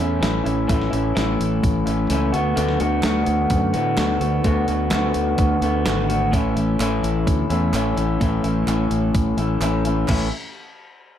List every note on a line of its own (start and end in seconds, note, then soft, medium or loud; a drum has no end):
0.00 0.20 E2 medium
0.00 0.22 A2 loud
0.00 0.19 E3 medium
0.00 0.21 A3 medium
0.00 0.21 C#4 medium
0.00 0.22 E4 medium
0.00 open hi-hat medium
0.21 0.44 A1 medium
0.21 0.67 E3 medium
0.21 0.46 A3 medium
0.21 0.44 C#4 medium
0.21 0.43 E4 medium
0.21 snare loud
0.21 open hi-hat medium
0.44 0.67 A1 medium
0.44 0.69 A3 medium
0.44 0.68 C#4 medium
0.44 0.68 E4 medium
0.44 open hi-hat soft
0.67 0.91 A1 medium
0.67 1.14 A2 medium
0.67 1.14 E3 medium
0.67 0.93 A3 loud
0.67 0.91 C#4 medium
0.67 0.90 E4 medium
0.67 kick loud
0.67 open hi-hat medium
0.82 snare soft
0.91 1.14 A1 medium
0.91 1.16 A3 medium
0.91 1.16 C#4 medium
0.91 1.16 E4 medium
0.91 open hi-hat medium
1.15 1.38 A1 medium
1.15 2.10 A2 loud
1.15 2.09 E3 loud
1.15 1.88 A3 medium
1.15 1.86 C#4 loud
1.15 1.85 E4 loud
1.15 snare loud
1.15 open hi-hat medium
1.40 1.62 A1 medium
1.40 open hi-hat medium
1.63 1.85 A1 medium
1.63 kick loud
1.63 open hi-hat medium
1.86 2.09 A1 medium
1.86 2.10 A3 medium
1.86 2.10 C#4 medium
1.86 2.11 E4 medium
1.86 open hi-hat medium
2.10 2.32 C#2 loud
2.10 2.32 E3 medium
2.10 2.34 A3 medium
2.10 2.33 C#4 medium
2.10 2.32 E4 medium
2.10 open hi-hat medium
2.32 2.56 D2 medium
2.32 2.55 D3 medium
2.32 2.56 A3 medium
2.32 2.57 B3 medium
2.32 2.58 F#4 medium
2.32 open hi-hat medium
2.56 2.79 D2 medium
2.56 3.03 D3 medium
2.56 2.82 A3 loud
2.56 2.81 B3 loud
2.56 2.80 F#4 medium
2.56 open hi-hat medium
2.69 snare soft
2.80 3.02 D2 medium
2.80 3.03 A3 medium
2.80 3.04 B3 medium
2.80 3.05 F#4 medium
2.80 open hi-hat medium
3.03 3.26 D2 medium
3.03 3.96 D3 medium
3.03 3.75 A3 loud
3.03 3.73 B3 medium
3.03 3.72 F#4 loud
3.03 snare loud
3.03 clap medium
3.03 open hi-hat medium
3.26 3.49 D2 medium
3.26 open hi-hat medium
3.50 3.72 F#2 medium
3.50 kick loud
3.50 open hi-hat medium
3.73 3.96 A2 medium
3.73 3.98 A3 medium
3.73 3.97 B3 medium
3.73 3.98 F#4 medium
3.73 open hi-hat medium
3.97 4.20 D2 loud
3.97 4.43 D3 medium
3.97 4.23 A3 medium
3.97 4.21 B3 medium
3.97 4.19 F#4 medium
3.97 snare loud
3.97 clap medium
3.97 open hi-hat medium
4.20 4.43 D2 medium
4.20 4.45 A3 medium
4.20 4.45 B3 medium
4.20 4.45 F#4 medium
4.20 open hi-hat medium
4.44 4.66 D2 medium
4.44 4.90 D3 medium
4.44 4.70 A3 loud
4.44 4.68 B3 loud
4.44 4.67 F#4 loud
4.44 kick loud
4.44 open hi-hat medium
4.68 4.90 D2 medium
4.68 4.92 A3 medium
4.68 4.91 B3 medium
4.68 4.92 F#4 medium
4.68 open hi-hat soft
4.91 5.14 D2 loud
4.91 5.84 D3 medium
4.91 5.64 A3 loud
4.91 5.62 B3 loud
4.91 5.61 F#4 loud
4.91 snare loud
4.91 clap loud
4.91 open hi-hat medium
5.14 5.37 D2 medium
5.14 open hi-hat medium
5.38 5.60 D2 medium
5.38 kick loud
5.38 open hi-hat medium
5.62 5.84 D2 medium
5.62 5.86 A3 medium
5.62 5.86 B3 medium
5.62 5.86 F#4 medium
5.62 open hi-hat medium
5.85 6.33 G#1 medium
5.85 6.31 D3 medium
5.85 6.11 A3 medium
5.85 6.09 B3 medium
5.85 6.07 F#4 medium
5.85 snare loud
5.85 clap loud
5.85 open hi-hat medium
6.09 6.33 A3 medium
6.09 6.32 B3 medium
6.09 6.31 F#4 medium
6.09 open hi-hat medium
6.32 6.55 A1 medium
6.32 6.79 A2 loud
6.32 6.80 E3 medium
6.32 6.58 A3 loud
6.32 6.57 C#4 loud
6.32 6.55 E4 loud
6.32 kick loud
6.32 open hi-hat medium
6.56 6.78 A1 medium
6.56 6.80 A3 medium
6.56 6.81 C#4 medium
6.56 6.81 E4 medium
6.56 open hi-hat medium
6.80 7.02 A1 loud
6.80 8.20 A2 loud
6.80 7.73 E3 loud
6.80 7.52 A3 loud
6.80 7.50 C#4 medium
6.80 7.49 E4 loud
6.80 clap loud
6.80 open hi-hat medium
7.03 7.25 A1 medium
7.03 open hi-hat medium
7.27 7.49 D2 medium
7.27 kick loud
7.27 open hi-hat medium
7.50 7.72 E2 medium
7.50 7.74 A3 medium
7.50 7.75 C#4 medium
7.50 7.75 E4 medium
7.50 open hi-hat medium
7.73 7.95 A1 loud
7.73 8.20 E3 medium
7.73 7.99 A3 medium
7.73 7.98 C#4 medium
7.73 7.96 E4 medium
7.73 clap loud
7.73 open hi-hat medium
7.97 8.19 A1 medium
7.97 8.20 A3 medium
7.97 8.21 C#4 medium
7.97 8.21 E4 medium
7.97 open hi-hat medium
8.20 8.42 A1 loud
8.20 8.66 A2 medium
8.20 8.66 E3 medium
8.20 8.45 A3 loud
8.20 8.44 C#4 loud
8.20 8.42 E4 loud
8.20 kick loud
8.20 open hi-hat medium
8.44 8.66 A1 medium
8.44 8.68 A3 medium
8.44 8.68 C#4 medium
8.44 8.69 E4 medium
8.44 open hi-hat medium
8.67 8.89 A1 medium
8.67 9.61 A2 loud
8.67 9.60 E3 loud
8.67 9.38 A3 loud
8.67 9.37 C#4 loud
8.67 9.36 E4 loud
8.67 clap loud
8.67 open hi-hat medium
8.91 9.12 A1 medium
8.91 open hi-hat medium
9.15 9.36 A1 medium
9.15 kick loud
9.15 open hi-hat medium
9.37 9.59 A1 loud
9.37 9.61 A3 medium
9.37 9.61 C#4 medium
9.37 9.62 E4 medium
9.37 open hi-hat medium
9.60 10.04 A1 loud
9.60 10.07 E3 medium
9.60 9.86 A3 medium
9.60 9.85 C#4 medium
9.60 9.84 E4 medium
9.60 clap medium
9.60 open hi-hat medium
9.85 10.08 A3 medium
9.85 10.08 C#4 medium
9.85 10.07 E4 medium
9.85 open hi-hat medium
10.08 10.30 A1 medium
10.08 10.27 A2 loud
10.08 10.27 E3 medium
10.08 10.27 A3 loud
10.08 10.28 C#4 loud
10.08 10.28 E4 loud
10.08 kick loud
10.08 clap medium
10.08 crash medium